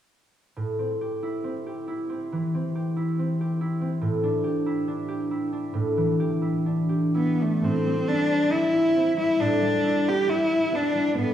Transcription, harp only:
0.56 A2
0.79 C4
1.01 G4
1.23 E4
1.44 C4
1.66 G4
1.88 E4
2.10 C4
2.32 E3
2.55 C4
2.75 G4
2.96 E4
3.19 C4
3.41 G4
3.61 E4
3.81 C4
4.01 A2
4.23 D4
4.44 G4
4.66 E4
4.88 D4
5.08 G4
5.31 E4
5.53 D4
5.74 A2
5.97 E3
6.20 G4
6.42 E4
6.66 D4
6.89 G4
7.15 E4
7.40 D4
7.62 A2
7.86 G3
8.09 E4
8.30 C4
8.52 G3
8.74 E4
8.96 C4
9.17 G3
9.39 A2
9.62 G3
9.84 E4
10.06 B3
10.27 G3
10.50 E4
10.72 B3
10.95 G3
11.15 A2

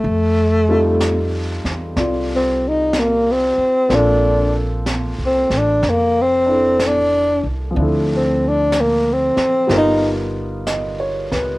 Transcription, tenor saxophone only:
Already playing: A3
2.36 C4
2.68 D#4
2.99 A#3
3.32 C4
3.95 D4
5.26 C4
5.58 D4
5.90 A#3
6.22 C4
6.87 D4
8.16 C4
8.49 D4
8.81 A#3
9.13 C4
9.78 D#4

